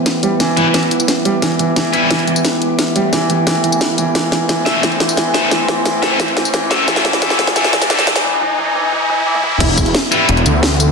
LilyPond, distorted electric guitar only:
\new Staff \with { instrumentName = "Distorted electric guitar" } { \time 4/4 \key e \minor \tempo 4 = 176 r4. <g e' b'>8 r2 | r4. <g e' b'>8 r2 | r1 | r4. <c' a' e''>8 r4. <c' a' e''>8 |
r4. <c' a' e''>8 r4. <c' a' e''>8 | <c' a' e''>8 r8 <c' a' e''>8 r8 <c' a' e''>8 r8 <c' a' e''>8 r8 | r1 | r4. <g e' b'>8 r2 | }